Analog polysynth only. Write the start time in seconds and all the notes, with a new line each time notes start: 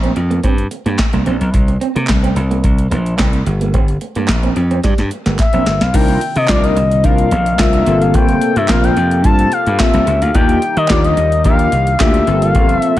5.94 D4 D#4 F4 A#4
6.49 D4 D#4 F4 A#4
7.04 D4 D#4 F4 A#4
7.59 D4 D#4 F4 A#4
7.86 A#3 C4 F4 A4
8.69 A#3 C4 F4 A#4
9.25 A#3 C4 F4 A4
9.79 A#3 C4 F4 A4
10.34 A#3 D4 F4 G4
10.90 A#3 D4 F4 G4
11.45 A#3 D4 F4 G4
11.99 A#3 D4 F4 G4
12.27 A#3 C4 F4 A4